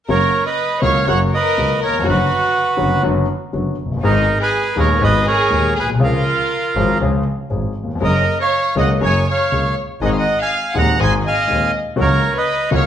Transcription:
0.08 double bass F#1, grand piano F#2 C#3 F#3 A#3 F#4, violin section A#4, bandoneon A#4 C#5
0.45 violin section B4, bandoneon B4 D#5
0.81 grand piano C#2 C#3 F#3 A#3 F#4, double bass C#2, violin section C#5, bandoneon C#5 F5
1.07 double bass F#1, grand piano F#2 C#3 F#3 A#3 F#4, violin section C#5, bandoneon C#5 F#5
1.31 violin section A#4, bandoneon D#5
1.36 bandoneon B4
1.57 double bass C#2, grand piano C#2 C#3 F#3 A#3 F#4
1.82 violin section A#4, bandoneon A#4 C#5
1.88 grand piano D#2
1.94 grand piano E2
1.99 grand piano F2
2.04 double bass F#1, grand piano F#2 D3 F#3 B3 F#4, violin section F#4
2.09 bandoneon F#4 B4
2.77 double bass F#1, grand piano F#2 D3 F#3 B3 F#4
3.03 double bass F#1, grand piano F#2 D3 F#3 B3 F#4
3.53 double bass F#1, grand piano F#2 D3 F#3 B3 F#4
3.79 double bass F#1
3.85 grand piano F1
3.91 grand piano F#1
3.97 grand piano G1
4.03 double bass G#1, grand piano G#1 G#2 D#3 G#3 B3 G#4, violin section D#4, bandoneon D#4 A#4
4.40 violin section G#4, bandoneon G#4 B4
4.76 grand piano D#1 D#2 D#3 G#3 B3 G#4, double bass D#2, violin section A#4, bandoneon A#4 C#5
5.00 grand piano G#1 G#2 D#3 G#3 B3 G#4, double bass G#1, violin section B4, bandoneon B4 D#5
5.25 violin section G#4, bandoneon A#4 C#5
5.50 grand piano D#1 D#2 D#3 G#3 B3 G#4, double bass D#2
5.76 double bass B1, violin section G#4, bandoneon G#4 B4
5.81 grand piano A#1
5.88 grand piano B1
5.95 grand piano C2
6.00 grand piano C#2 C#3 F3 G#3 C#4 G#4, double bass C#2, violin section F4, bandoneon F4 A#4
6.75 double bass G#1, grand piano G#1 G#2 F3 G#3 C#4 G#4
7.00 double bass C#2, grand piano C#2 C#3 F3 G#3 C#4 G#4
7.50 double bass G#1, grand piano G#1 G#2 F3 G#3 C#4 G#4
7.83 grand piano D#2
7.88 grand piano E2
7.95 grand piano F2
8.00 double bass F#1, grand piano F#2 F#3 A#3 C#4 G#4, violin section A#4, bandoneon D#5
8.05 bandoneon A#4
8.41 bandoneon C#5 F5, violin section C#5
8.75 double bass C#2, grand piano C#2 C#3 F#3 A#3 C#4 G#4, bandoneon D#5, violin section D#5
8.80 bandoneon F#5
9.01 double bass F#1, grand piano F#2 F#3 A#3 C#4 G#4, violin section C#5, bandoneon C#5
9.05 bandoneon G#5
9.28 violin section C#5, bandoneon C#5 F5
9.52 grand piano C#2 C#3 F#3 A#3 C#4 G#4, double bass C#2
10.01 double bass G#1, grand piano G#1 G#2 D#3 G#3 C4 G#4, violin section D#5
10.05 violin section C#5, bandoneon D#5 F#5
10.12 bandoneon F5
10.16 violin section D#5, bandoneon D#5 F#5
10.40 violin section F5, bandoneon F5 G#5
10.74 grand piano D#1 D#2 D#3 G#3 C4 G#4, double bass D#2, violin section F#5
10.78 bandoneon F#5 A#5
11.00 grand piano G#1 G#2 D#3 G#3 C4 G#4, double bass G#1, violin section G#5, bandoneon G#5 C6
11.26 violin section D#5, bandoneon F5 G#5
11.47 grand piano D#1 D#2 D#3 G#3 C4 G#4, double bass D#2
11.96 grand piano C#2 C#3 F#3 A#3 F#4, double bass C#2
12.01 bandoneon A#4 C#5, violin section A#4
12.36 violin section B4, bandoneon B4 D#5
12.71 grand piano C#2 C#3 F#3 A#3 F#4, double bass C#2, violin section C#5
12.75 bandoneon C#5 F5

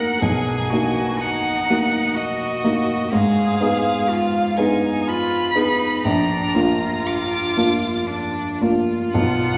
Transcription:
Already playing: grand piano A#3 D#4 F#4, cello A#4, violin F#5
0.20 grand piano B1, cello G#4, violin G#5
0.70 grand piano A#3 D#4 F#4, cello F#4
1.19 cello D#4, violin F#5
1.70 grand piano A#3 D#4 F#4
2.15 cello F#4, violin D#5
2.64 grand piano A#3 D#4 F#4
3.12 grand piano G#2, cello G#4, violin F5
3.61 grand piano B3 D#4 G#4
4.10 cello F4
4.57 grand piano B3 D#4 G#4, cello D#4, violin G#5
5.08 cello F4, violin B5
5.55 grand piano B3 D#4 G#4, cello D#4
6.04 grand piano A#1, cello D4, violin A#5
6.55 grand piano A#3 D4 F4, cello F4
7.07 violin D6
7.57 grand piano A#3 D4 F4
8.07 cello D4
8.61 grand piano A#3 D4 F4, cello F4
9.13 grand piano B1, violin F#5

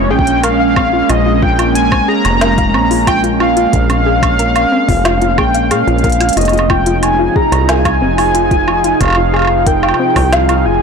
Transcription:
Already playing: acid bass F1, ambient pad G#3 A#3 C#4, soft synth lead C#5
0.10 acid bass A#1, synth arpeggio sound G#4, soft synth lead G5
0.19 kick
0.27 closed hi-hat
0.43 synth arpeggio sound A#4, soft synth lead F5, closed hi-hat, high woodblock
0.60 synth arpeggio sound F5
0.76 synth arpeggio sound C4, kick, high woodblock
0.93 synth arpeggio sound F4
1.09 acid bass A#1, synth arpeggio sound F4, soft synth lead D#5, closed hi-hat, high woodblock
1.26 synth arpeggio sound F4
1.42 synth arpeggio sound F4, soft synth lead G5, kick
1.59 synth arpeggio sound F4, closed hi-hat, high woodblock
1.75 soft synth lead G#5, closed hi-hat
1.92 synth arpeggio sound C4, kick, high woodblock
2.08 synth arpeggio sound G#4, soft synth lead A#5
2.25 acid bass F1, closed hi-hat, high woodblock
2.41 synth arpeggio sound A#4, snare, closed hi-hat
2.58 synth arpeggio sound F5, kick, closed hi-hat
2.74 acid bass A#1, synth arpeggio sound C4, high woodblock
2.91 synth arpeggio sound F4, open hi-hat
3.07 synth arpeggio sound F4, soft synth lead G5, kick, closed hi-hat, high woodblock
3.24 synth arpeggio sound F4, closed hi-hat
3.40 synth arpeggio sound F4, soft synth lead F5, high woodblock
3.57 synth arpeggio sound F4, closed hi-hat
3.73 acid bass A#1, kick, closed hi-hat
3.90 synth arpeggio sound C4, closed hi-hat, high woodblock
4.06 synth arpeggio sound G#4
4.23 kick, closed hi-hat, high woodblock
4.39 synth arpeggio sound A#4, closed hi-hat
4.56 synth arpeggio sound F5, closed hi-hat, high woodblock
4.72 synth arpeggio sound C4
4.89 acid bass F1, synth arpeggio sound F4, kick, open hi-hat
5.05 synth arpeggio sound F4, snare, closed hi-hat, high woodblock
5.22 synth arpeggio sound F4, closed hi-hat
5.38 acid bass A#1, synth arpeggio sound G#4, soft synth lead G5, kick, high woodblock
5.54 synth arpeggio sound F5, closed hi-hat
5.71 acid bass A#2, synth arpeggio sound G#4, soft synth lead F5, closed hi-hat, high woodblock
5.87 acid bass A#1, synth arpeggio sound F4, closed hi-hat
5.98 closed hi-hat
6.04 synth arpeggio sound A#4, kick, closed hi-hat
6.10 closed hi-hat
6.12 closed hi-hat
6.20 synth arpeggio sound F4, closed hi-hat, high woodblock
6.29 closed hi-hat
6.33 acid bass F1, ambient pad F4, synth arpeggio sound F4, closed hi-hat
6.37 ambient pad C3 F3 D#4 G#4, soft synth lead D#5, closed hi-hat, high woodblock
6.41 closed hi-hat
6.45 closed hi-hat, high woodblock
6.49 closed hi-hat
6.53 synth arpeggio sound F4, closed hi-hat
6.57 closed hi-hat, high woodblock
6.70 synth arpeggio sound F4, soft synth lead G5, kick, high woodblock
6.86 synth arpeggio sound F4, closed hi-hat
7.03 soft synth lead G#5, closed hi-hat, high woodblock
7.19 synth arpeggio sound F4
7.36 synth arpeggio sound G#4, soft synth lead A#5, kick
7.52 acid bass C2, closed hi-hat, high woodblock
7.69 synth arpeggio sound A#4, soft synth lead G#5, snare, closed hi-hat
7.85 synth arpeggio sound F5, kick, closed hi-hat, high woodblock
8.02 acid bass F1, synth arpeggio sound C4
8.18 synth arpeggio sound F4, open hi-hat, high woodblock
8.35 synth arpeggio sound F4, closed hi-hat
8.51 synth arpeggio sound F4, kick, closed hi-hat
8.68 synth arpeggio sound F4, high woodblock
8.84 synth arpeggio sound F4, closed hi-hat
9.01 acid bass F1, soft synth lead F5, kick, closed hi-hat, high woodblock
9.03 high woodblock
9.05 high woodblock
9.08 high woodblock
9.10 high woodblock
9.12 high woodblock
9.15 synth arpeggio sound F4, high woodblock
9.33 synth arpeggio sound G#4, high woodblock
9.36 high woodblock
9.39 high woodblock
9.42 high woodblock
9.45 high woodblock
9.47 high woodblock
9.66 synth arpeggio sound A#4, soft synth lead G5, kick, closed hi-hat
9.83 synth arpeggio sound F5, high woodblock
9.88 high woodblock
9.94 high woodblock
9.99 synth arpeggio sound C4
10.16 acid bass C2, synth arpeggio sound F4, kick, open hi-hat, high woodblock
10.32 synth arpeggio sound F4, soft synth lead F5, snare, closed hi-hat
10.49 synth arpeggio sound F4, closed hi-hat, high woodblock
10.65 acid bass F1, synth arpeggio sound F4, soft synth lead G#5

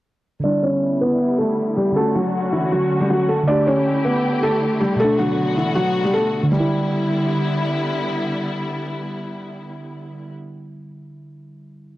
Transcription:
0.40 synth keys D3, string section E4, felt piano D5
0.44 string section D3 G3 B3, synth keys G3, felt piano D4
0.48 synth keys E4
0.63 felt piano C#4 C#5
1.01 felt piano B3 B4
1.38 felt piano A3 A4
1.76 felt piano G3 G4
1.92 synth keys D3, string section A3 C#4 F#4, felt piano A4
1.96 felt piano A3, synth keys C#4
2.00 synth keys F#4
2.15 felt piano F#3 F#4
2.52 felt piano E3 E4
2.72 felt piano F#3 F#4
3.00 felt piano G3 G4
3.10 felt piano F#3 F#4
3.29 felt piano A3 A4
3.43 synth keys D3
3.47 string section D3 E4 G4, synth keys A3, felt piano D4 D5
3.52 synth keys G4
3.67 felt piano C#4 C#5
4.05 felt piano B3 B4
4.43 felt piano A3 A4
4.81 felt piano G3 G4
4.96 synth keys B2, string section B3 F#4, felt piano A4
5.00 synth keys A3, felt piano A3
5.04 synth keys D4
5.19 felt piano F#3 F#4
5.57 felt piano E3 E4
5.75 felt piano F#3 F#4
6.04 felt piano G3 G4
6.14 felt piano A3 A4
6.43 synth keys D3
6.51 string section D3 G3 B3 E4, synth keys G3, felt piano G3
6.60 synth keys E4

